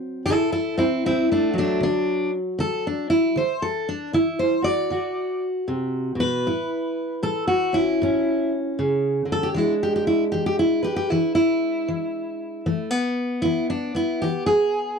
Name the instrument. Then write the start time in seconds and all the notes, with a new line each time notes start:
steel-string acoustic guitar
Already playing: D3 F#3 C4
0.26 D3 E4 A4
0.52 E4 A4
0.78 C4 E4
1.06 D3 C4 E4
1.32 A3 D4
1.53 F#3
1.58 A3 D4
1.80 D3 D4
2.59 D3 A4
2.87 D4
3.10 E4
3.36 D3 C5
3.62 A4
3.89 D4
4.13 D3 E4
4.39 C5
4.62 F#4 D5
4.90 D3 F#4
5.68 C3
6.15 B2
6.20 B4
6.47 A2 E4
7.23 A2 A4
7.47 F#4
7.73 C#4 E4
8.02 A2 C#4
8.79 C#3
9.25 D3
9.32 A4
9.43 G4
9.54 E3 G#3 D4 E4
9.83 G4
9.96 G4
10.07 E4
10.32 E3 G4
10.46 G4
10.59 E4
10.83 G4 B4
10.96 G4
11.10 E3 E4
11.35 E4
11.88 E3
12.66 E3 A3
12.91 B3
13.42 E3 E4
13.70 D4
13.95 B3 E4
14.22 E3 G4
14.46 G#4